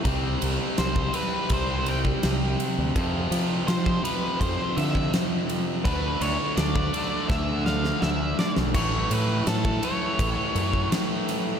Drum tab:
CC |----------------|----------------|----------------|x---------------|
RD |x-x-x-x-x-x-x-x-|x-x-x-x-x-x-x-x-|x-x-x-x---------|--x-x-x-x-x-x-x-|
SD |----o-------o---|----o-------o---|----o---o-ooo-oo|----o-------o-o-|
BD |o----o--o--o----|o----o--o--o----|o----o--o-------|o----o--o--o----|